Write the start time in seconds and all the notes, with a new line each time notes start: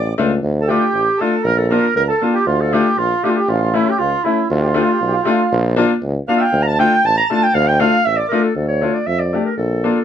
Already playing: A1 D5
0.18 C#2 A3 D4 F4
0.43 D2
0.61 A4
0.68 A3 D4 F4 G4
0.93 A1
1.18 A3 D4 F4 A4
1.43 A#1 A#4
1.57 A4
1.69 A#3 D4 F4 A#4
1.95 C#2 A#4
2.08 A4
2.21 A#3 D4 F4
2.33 G4
2.47 D2 F4
2.61 A4
2.73 A3 D4 F4 G4
2.97 A#1 F4
3.23 A3 D4 F4 G4
3.29 F4
3.36 G4
3.48 A1 F4
3.74 A3 C#4 E4
3.86 G4
3.99 C#2 F4
4.24 A3 C#4 E4
4.50 D2 F4
4.60 G4
4.68 F4
4.74 A3 D4 F4 G4
4.84 F4
4.92 G4
4.98 B1 F4
5.07 G4
5.13 F4
5.23 A3 D4 G4
5.27 F4
5.31 F4
5.52 A#1
5.76 A#3 D4 F4
6.03 C#2
6.28 A#3 D4 F4 F5
6.37 E5 G5
6.44 F5
6.53 D2
6.63 A#5
6.67 A5
6.79 A3 D4 F4 G5
7.04 A1 A5
7.17 A#5
7.25 A#5
7.29 A3 D4 F4 A5
7.43 G5
7.55 D2 F5
7.67 G5
7.79 A3 D4 F4 F5
8.04 A1 E5
8.17 D5
8.29 A3 A#4
8.33 D4 F4
8.42 A4
8.56 D2 A4
8.68 C#5
8.81 A3 D4 F4
8.94 D5
9.07 F2 E5
9.19 D5
9.33 A3 D4 G4
9.46 A#4
9.57 A#1 A4
9.84 A#3 D4 F4